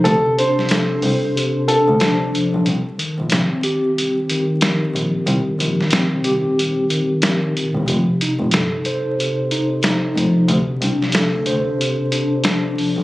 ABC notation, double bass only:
X:1
M:4/4
L:1/16
Q:"Swing 16ths" 1/4=92
K:Cdor
V:1 name="Double bass" clef=bass
D,,2 z4 C,,4- C,, D,, z3 =B,,, | C,,3 B,,, C,,2 z8 B,,, z | C,,2 B,,, z2 C,, C,,4- C,, z4 =E,,, | F,,,3 F,,, G,,,2 z8 F,,, z |
D,,2 C,, z2 D,, D,,4- D,, z4 =B,,, |]